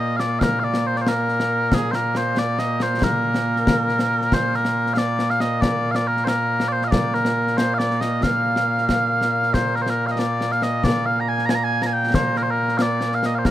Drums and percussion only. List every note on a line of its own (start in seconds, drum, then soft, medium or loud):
0.20 snare medium
0.41 concert bass drum medium
0.41 snare loud
0.74 snare medium
0.96 snare soft
1.07 snare medium
1.29 snare soft
1.40 snare medium
1.72 concert bass drum medium
1.72 snare medium
1.93 snare medium
2.15 snare medium
2.37 snare medium
2.59 snare medium
2.80 snare medium
3.02 concert bass drum medium
3.02 snare loud
3.34 snare medium
3.56 snare soft
3.67 concert bass drum medium
3.67 snare loud
3.89 snare soft
3.99 snare medium
4.21 snare soft
4.32 concert bass drum medium
4.32 snare medium
4.54 snare soft
4.65 snare medium
4.86 snare soft
4.97 snare medium
5.19 snare medium
5.30 snare soft
5.40 snare medium
5.62 concert bass drum medium
5.62 snare medium
5.95 snare medium
6.17 snare soft
6.27 snare medium
6.60 snare medium
6.82 snare soft
6.92 concert bass drum medium
6.92 snare loud
7.14 snare soft
7.25 snare medium
7.47 snare soft
7.58 snare loud
7.80 snare medium
7.91 snare soft
8.01 snare medium
8.23 concert bass drum medium
8.23 snare medium
8.56 snare medium
8.78 snare soft
8.89 concert bass drum soft
8.89 snare medium
9.21 snare medium
9.43 snare soft
9.54 concert bass drum soft
9.54 snare medium
9.76 snare soft
9.87 snare medium
10.08 snare soft
10.19 snare medium
10.41 snare medium
10.52 snare soft
10.62 snare medium
10.84 concert bass drum medium
10.84 snare medium
11.38 snare soft
11.49 snare loud
11.82 snare medium
12.04 snare soft
12.14 concert bass drum medium
12.14 snare loud
12.36 snare soft
12.68 snare soft
12.79 snare loud
13.01 snare medium
13.12 snare soft
13.23 snare medium
13.45 concert bass drum medium
13.45 snare medium